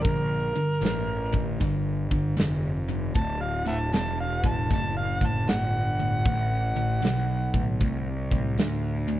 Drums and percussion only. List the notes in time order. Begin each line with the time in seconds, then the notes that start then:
0.05 kick, open hi-hat
0.83 snare, open hi-hat
1.34 kick
1.61 kick, open hi-hat
2.11 kick
2.38 snare, open hi-hat
3.14 kick, open hi-hat
3.92 snare, open hi-hat
4.44 kick
4.70 kick, open hi-hat
5.21 kick
5.47 snare, open hi-hat
6.25 kick, open hi-hat
7.03 snare, open hi-hat
7.54 kick
7.80 kick, open hi-hat
8.31 kick
8.58 snare, open hi-hat